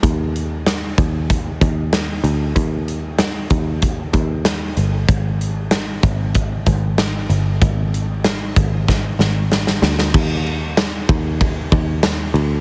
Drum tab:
CC |----------------|----------------|----------------|----------------|
RD |----------------|----------------|----------------|----------------|
HH |x-x-x-x-x-x-x-x-|x-x-x-x-x-x-x-x-|x-x-x-x-x-x-x-x-|x-x-x-x---------|
TB |----------------|----------------|----------------|----------------|
SD |----o-------o---|----o-------o---|----o-------o---|----o---o-o-oooo|
BD |o-----o-o-o-----|o-----o-o-o-----|o-----o-o-o-----|o-----o-o-------|

CC |x---------------|
RD |--x-x-x-x-x-x-x-|
HH |----------------|
TB |----x-------x---|
SD |----o-------o---|
BD |o-----o-o-o-----|